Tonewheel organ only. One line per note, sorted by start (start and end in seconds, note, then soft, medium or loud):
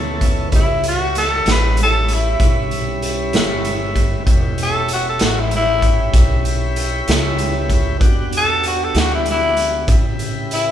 0.00 0.48 B3 medium
0.00 0.48 C#4 medium
0.00 0.49 E4 medium
0.00 0.49 A4 medium
0.52 4.23 G3 medium
0.52 4.23 C#4 medium
0.52 4.23 E4 medium
0.52 4.23 B4 medium
4.26 7.97 C#4 medium
4.26 7.97 E4 medium
4.26 7.97 G4 medium
4.26 7.97 B4 medium
8.00 9.86 B3 medium
8.00 9.86 D4 medium
8.00 9.87 F#4 medium
8.00 9.86 G4 medium
9.89 10.71 C#3 medium
9.89 10.71 E4 medium
9.89 10.71 G4 medium
9.89 10.71 B4 medium